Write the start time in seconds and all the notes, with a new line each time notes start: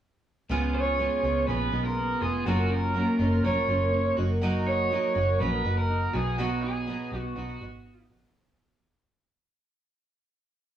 0.49 C#2 C#3 G#3 B3 F4
0.75 B3 C#5
0.98 C#3 G#3 B3 F4
1.23 C#2 G#3 B3 F4
1.47 A#1 C#3 G#3 B3 F4 B4
1.72 B1 G#3 B3 D#4 F4
1.85 F4 A#4
1.97 B3
2.21 F1 G#3 B3 F4 G#4
2.46 F#1 F#3 A#3 C#4 F4 F#4
2.71 C#4 A#4
2.94 F#3 A#3 C#4 F4
3.19 F#1 A#3 C#4 D#4 F4
3.32 F4
3.44 F1 F#3 A#3 C#4 F4 C#5
3.68 F#1 A#3 C#4 F4
3.93 C#4
4.17 F#1 F#3 A#3 D#4 F#4
4.41 F#3 A#3 D#4 F#4
4.66 D#4 C#5
4.90 F#3 A#3 D#4 F#4
5.15 F#1 A#3 D#4 F#4
5.39 A#1 F#3 A#3 C#4 D#4 F#4 B4
5.53 D#4
5.64 F#1 A#3 D#4 F#4
5.78 A#4
5.90 D#4
6.13 B1 B2 B3 D#4 F#4 G#4
6.38 B2 F#3 B3 D#4 F#4
6.62 D#4 G#4
6.87 F#3 B3 D#4 F#4
7.12 B1 B3 D#4 F#4
7.18 F#4
7.36 B1 F#3 B3 D#4 F#4
7.61 G#1 B3 D#4 F#4
7.85 D#4
8.10 A#1 B3 D#4 F#4